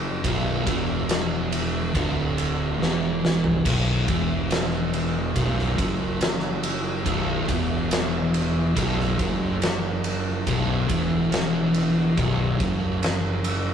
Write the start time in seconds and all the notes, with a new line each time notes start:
Already playing: F#1 F#2
0.24 B0 B1, kick, ride
0.66 E1 E2, kick, ride
1.09 snare, ride
1.52 ride
1.94 D1 D2, kick, ride
2.38 ride
2.79 E1 E2, snare
3.25 snare
3.44 floor tom
3.64 B0 B1, kick, crash, ride
4.07 E1 E2, kick, ride
4.51 snare, ride
4.93 ride
5.35 B0 B1, kick, ride
5.59 snare
5.77 F#1 F#2, kick, ride
6.21 snare, ride
6.63 ride
7.05 B0 B1, kick, ride
7.48 E1 E2, kick, ride
7.91 snare, ride
8.34 ride
8.75 B0 B1, kick, ride
9.00 snare
9.18 F#1 F#2, kick, ride
9.62 snare, ride
10.04 ride
10.47 B0 B1, kick, ride
10.88 E1 E2, kick, ride
11.32 snare, ride
11.74 ride
12.17 B0 B1, kick, ride
12.60 F#1 F#2, kick, ride
13.03 snare, ride
13.44 ride